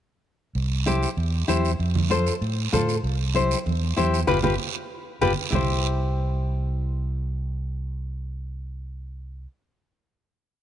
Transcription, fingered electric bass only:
0.55 C2
1.17 E2
1.48 E2
1.79 F2
2.41 A2
2.73 A2
3.04 C2
3.67 E2
3.98 E2
4.28 G1
4.44 G1
5.21 G1
5.53 C2

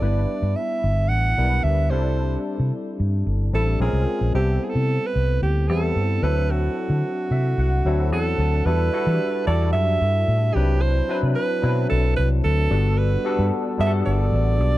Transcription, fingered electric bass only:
0.02 G1
0.42 G2
0.84 G1
1.10 A1
1.38 B1
1.64 D2
1.91 C2
2.59 C3
3.00 G2
3.27 G1
3.53 A1
3.80 A#1
3.93 C2
4.21 A#1
4.35 C2
4.75 C3
5.16 C2
5.42 D2
5.69 E2
5.96 G2
6.22 D2
6.90 D3
7.31 C3
7.58 C2
7.85 D2
8.12 E2
8.38 D2
8.66 E2
9.07 E3
9.47 E2
9.74 F#2
10.01 G2
10.28 A2
10.55 C2
11.23 C3
11.63 B2
11.91 B1
12.18 C2
12.45 D2
12.71 G1
13.39 G2
13.79 G2
14.07 G1
14.32 A1
14.60 B1

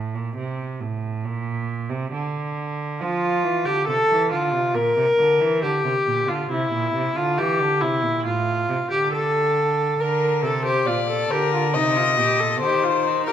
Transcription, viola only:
2.99 F4
3.65 G4
3.87 A4
4.31 F4
4.75 A#4
5.63 G4
6.28 F4
6.51 E4
7.16 F4
7.38 G4
7.81 E4
8.25 F4
8.91 G4
9.13 A4
10.00 A#4
10.44 A4
10.65 G4
10.87 F4
11.09 A4
11.31 G4
11.53 F4
11.75 D#4
11.97 F4
12.19 G4
12.40 A4
12.62 G4
12.83 F4
13.06 D#4
13.27 G4

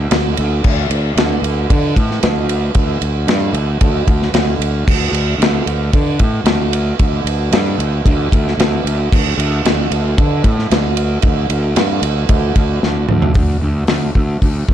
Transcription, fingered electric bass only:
0.11 D2
0.38 D2
0.65 D2
0.90 D2
1.16 D2
1.42 D2
1.70 D3
1.96 A2
2.23 D2
2.75 D2
3.01 D2
3.27 G2
3.53 D2
3.81 D2
4.07 D2
4.33 D2
4.59 D2
4.88 D2
5.12 D2
5.38 D2
5.66 D2
5.93 D3
6.20 A2
6.44 D2
7.00 D2
7.24 D2
7.51 G2
7.78 D2
8.05 D2
8.32 D2
8.57 D2
8.84 D2
9.12 D2
9.37 D2
9.65 D2
9.91 D2
10.18 D3
10.44 A2
10.70 D2
11.23 D2
11.49 D2
11.76 G2
12.02 D2
12.29 D2
12.56 D2
12.83 D2
13.10 D2
13.35 D2
13.62 D2
13.89 D2
14.15 D2
14.42 D2
14.69 D2

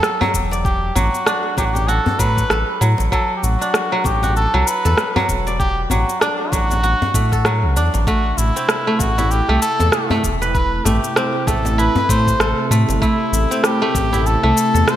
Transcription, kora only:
Already playing: F#3 D4 F#4 A4
0.21 F#3
0.52 D5
0.95 F#3
1.26 D4
1.58 F#3
1.88 F#4
2.19 F#3
2.50 A4
2.81 F#3
3.12 F#3
3.61 D4
3.92 F#3
4.23 F#4
4.54 F#3
4.85 A4
5.16 F#3
5.47 D5
5.91 F#3
6.21 D4
6.53 F#3
6.83 F#4
7.15 A3
7.33 A4
7.46 F#3
7.77 D4
8.07 A3
8.56 C4
8.87 A3
9.18 E4
9.49 A3
9.80 A4
10.11 A3
10.42 B4
10.85 A3
11.16 C4
11.47 A3
11.78 E4
12.09 A3
12.40 A4
12.71 A3
13.02 A3
13.51 C4
13.82 A3
14.13 E4
14.43 A3
14.74 A4

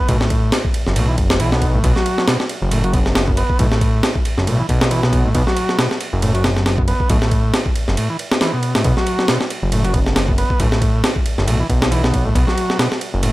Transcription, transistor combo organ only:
0.08 A2
0.96 A2
1.09 E3
1.40 E3
1.52 B2
1.74 A2
1.84 B2
1.96 F#3
2.27 B2
2.71 A2
2.84 F#3
2.94 B2
3.28 B2
3.37 B3
3.59 A2
4.47 A2
4.59 E3
4.91 E3
5.03 B2
5.25 A2
5.35 B2
5.47 F#3
5.78 B2
6.22 A2
6.35 F#3
6.44 B2
6.78 B2
6.88 B3
7.10 A2
7.98 A2
8.10 E3
8.41 E3
8.53 B2
8.75 A2
8.85 B2
8.97 F#3
9.29 B2
9.73 A2
9.84 F#3
9.94 B2
10.28 B2
10.38 B3
10.60 A2
11.47 A2
11.60 E3
11.91 E3
12.04 B2
12.25 A2
12.35 B2
12.47 F#3
12.79 B2
13.23 A2

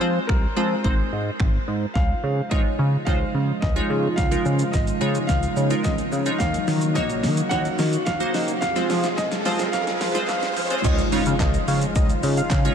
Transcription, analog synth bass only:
0.01 F3
0.29 C2
0.57 F3
0.85 G#1
1.12 G#2
1.40 G#1
1.68 G#2
1.95 C#2
2.23 C#3
2.51 G#1
2.79 C#3
3.07 C#2
3.34 C#3
3.62 C#2
3.90 C#3
4.18 C#2
4.45 C#3
4.74 G#1
5.01 C#3
5.29 C#2
5.57 C#3
5.85 C#2
6.12 C#3
6.40 D#2
6.68 D#3
6.96 A#1
7.23 D#3
7.51 D#2
7.79 D#3
8.07 D#2
8.34 D#3
8.62 F2
8.90 F3
9.18 C2
9.46 F3
9.73 F2
10.01 F3
10.29 F2
10.57 F3
10.84 C#2
11.12 C#3
11.26 C#3
11.40 C#2
11.68 C#3
11.96 C#2
12.23 C#3
12.51 C#3

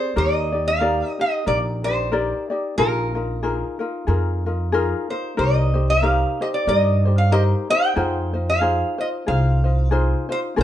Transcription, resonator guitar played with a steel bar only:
Already playing: C5
0.18 D#5
0.68 F5
1.21 D#5
1.48 D5
1.84 C5
2.78 A#4
5.10 C5
5.39 D#5
5.90 F5
6.42 D#5
6.54 D5
6.69 D#5
7.18 F5
7.32 D#5
7.70 G5
8.50 F5
9.01 D#5
9.28 F5
10.32 C5

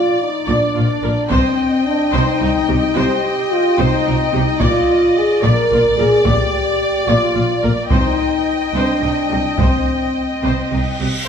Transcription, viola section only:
0.47 D5
0.75 F4
1.03 A#4
1.30 C5
2.13 C5
2.41 D#4
2.68 G4
2.95 C5
3.79 C5
4.06 D#4
4.34 G4
4.61 D5
5.43 D5
5.72 F4
5.98 A#4
6.26 D5
7.08 D5
7.35 F4
7.63 A#4
7.91 C5
8.75 C5
9.02 D#4
9.30 G4
9.59 C5
10.43 C5
10.72 D#4
11.00 G4

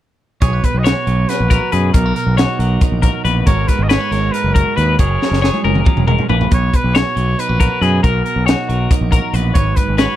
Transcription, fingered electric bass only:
0.42 B1
0.74 B1
1.07 B1
1.40 A#1
1.73 F#2
1.94 B1
2.27 B1
2.59 B1
2.92 A#1
3.25 A#1
3.47 G#1
3.79 G#1
4.11 G#1
4.44 F#1
4.78 D#2
4.99 F#1
5.31 F#1
5.65 F#1
5.97 E1
6.30 A#1
6.52 B1
6.84 B1
7.16 B1
7.49 A#1
7.81 F#2
8.04 B1
8.36 B1
8.69 B1
9.01 A#1
9.33 A#1
9.56 G#1
9.88 G#1

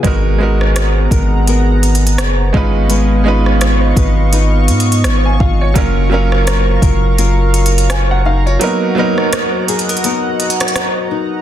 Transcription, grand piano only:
0.03 G#3 B3 D#4 F#4
0.07 A#4
0.38 G#3 B3 D#4 F#4
0.43 A#4
2.53 G#3 C#4 D#4 F4
2.57 B4
3.24 G#3 C#4 D#4 F4
3.28 B4
5.25 G#5
5.41 F5
5.61 C#5
5.74 F#3 A#3 C#4 F4
5.78 A#4
6.10 F#3 A#3 C#4 F4
6.14 A#4
7.91 G#5
8.11 F#5
8.26 F5
8.46 C#5
8.59 F#3 A#3 B3 D#4
8.64 A#4
8.95 F#3 A#3 B3 D#4
8.99 A#4

